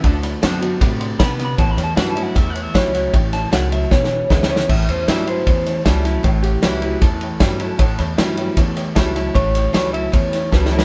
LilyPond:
<<
  \new Staff \with { instrumentName = "Clean electric guitar" } { \time 4/4 \key a \mixolydian \tempo 4 = 154 e''8 r2 r8 \tuplet 3/2 { b''8 r8 b''8 } | \tuplet 3/2 { a''8 b''8 a''8 fis''8 a''8 fis''8 e''8 fis''8 e''8 } cis''4 | r8 a''8 fis''8 e''8 cis''4. cis''8 | e''8 c''8 e''8 c''4. a'4~ |
a'8 g'4. a'2~ | a'4 r2. | cis''4 cis''8 e''8 cis''4 b'8 b'8 | }
  \new Staff \with { instrumentName = "Honky-tonk piano" } { \time 4/4 \key a \mixolydian <d'' fis'' a''>8 <d'' fis'' b''>8 <d'' fis'' a''>8 <d'' fis'' a''>8 <d'' fis'' b''>8 <d'' fis'' c'''>8 <d'' fis'' a''>8 <d'' fis'' b''>8 | <cis'' e'' a''>8 <cis'' e'' g''>8 <cis'' e'' a''>8 <cis'' e'' a''>8 <cis'' e'' g''>8 <cis'' e'' a''>8 <cis'' e'' fis''>8 <cis'' e'' fis''>8 | <cis'' e'' g''>8 <cis'' e'' a''>8 <cis'' e'' fis''>8 <cis'' e'' a''>8 <b' e'' gis''>8 <b' e'' gis''>8 <b' e'' b''>8 <b' e'' b''>8 | <cis'' e'' a''>8 <cis'' e'' a''>8 <cis'' e'' a''>8 <cis'' e'' a''>8 <cis'' e'' a''>8 <cis'' e'' a''>8 <cis'' e'' a''>8 <cis'' e'' a''>8 |
<cis'' e'' g''>8 <cis'' e'' fis''>8 <cis'' e'' fis''>8 <cis'' e'' b''>8 <cis'' e'' a''>8 <cis'' e'' g''>8 <cis'' e'' g''>8 <cis'' e'' a''>8 | <cis'' e'' a''>8 <cis'' e'' b''>8 <cis'' e'' b''>8 <cis'' e'' g''>8 <cis'' e'' a''>8 <cis'' e'' g''>8 <cis'' e'' a''>8 <cis'' e'' a''>8 | <cis'' e'' a''>8 <cis'' e'' g''>8 <cis'' e'' a''>8 <cis'' e'' a''>8 <cis'' e'' a''>8 <cis'' e'' g''>8 <cis'' e'' a''>8 <cis'' e'' b''>8 | }
  \new Staff \with { instrumentName = "Steel-string acoustic guitar" } { \time 4/4 \key a \mixolydian << { r4 <d a c' fis'>8 <c' fis'>8 r2 | r4 <e g cis' e'>8 <cis' e'>8 r4 <e g cis' e'>8 <cis' e'>8 | r2. <d gis b e'>8 <b e'>8 | r4 <e g cis' e'>8 <cis' e'>8 r4 <e g cis' e'>8 <cis' e'>8 |
r4 <e g cis' e'>8 <cis' e'>8 r4 <e g cis' e'>8 <cis' e'>8 | r4 <e g cis' e'>4 r4 <e g cis' e'>8 <cis' e'>8 | r4 <e g cis' e'>8 <cis' e'>8 r4 <e g cis' e'>8 <cis' e'>8 | } \\ { d2 c4 b4 | a,2 e,2 | g,4 fis,4 e,2 | a,2 e,2 |
a,2 e,2 | a,2 e,2 | a,2 e,2 | } >> }
  \new Staff \with { instrumentName = "Clean electric guitar" } { \clef bass \time 4/4 \key a \mixolydian <d a>4 <d b>8 <d b>8 <d a>4 <d b>8 <d b>8 | <a, e>4 <a, fis>8 <a, fis>8 <a, e>4 <a, fis>8 <a, fis>8 | <a, e>4 <a, fis>8 <a, fis>8 <e, b,>4 <e, cis>8 <e, cis>8 | <a, e>4 <a, fis>8 <a, fis>8 <a, e>4 <a, fis>8 <a, fis>8 |
<a, e>4 <a, fis>8 <a, fis>8 <a, e>4 <a, fis>8 <a, fis>8 | <a, e>4 <a, fis>8 <a, fis>8 <a, e>4 <a, fis>8 <a, fis>8 | <a, e>4 <a, fis>8 <a, fis>8 <a, e>4 <a, fis>8 <a, fis>8 | }
  \new Staff \with { instrumentName = "Upright bass" } { \clef bass \time 4/4 \key a \mixolydian d,4 fis,4 a,4 c4 | a,,8 e,8 g,4 e,4 cis,4 | a,,4 cis,4 e,,4 d,4 | a,,8 e,8 g,4 e,4 cis,4 |
a,,4 cis,4 e,4 g,4 | a,,8 e,8 g,4 e,4 cis,4 | a,,4 cis,4 e,4 cis,4 | }
  \new DrumStaff \with { instrumentName = "Drums" } \drummode { \time 4/4 <bd cymr>8 <cymr sn>8 <cymr sn>8 cymr8 <bd cymr sn>8 cymr8 <bd cymr sn>8 <cymr sn>8 | <bd cymr>8 <cymr sn>8 <cymr sn>8 cymr8 <bd cymr sn>8 cymr8 <bd cymr sn>8 <cymr sn>8 | <bd cymr>8 <cymr sn>8 <cymr sn>8 cymr8 \tuplet 3/2 { <bd sn>8 sn8 r8 <bd sn>8 sn8 sn8 } | <cymc bd>8 cymr8 <cymr sn>8 cymr8 <bd cymr>8 <cymr sn>8 <bd cymr sn>8 <cymr sn>8 |
<bd cymr>8 cymr8 <cymr sn>8 cymr8 <bd cymr sn>8 cymr8 <bd cymr sn>8 cymr8 | <bd cymr>8 <cymr sn>8 <cymr sn>8 cymr8 <bd cymr sn>8 <cymr sn>8 <bd cymr sn>8 <cymr sn>8 | <bd cymr>8 <cymr sn>8 <cymr sn>8 cymr8 <bd cymr>8 <cymr sn>8 \tuplet 3/2 { <bd sn>8 sn8 sn8 } | }
>>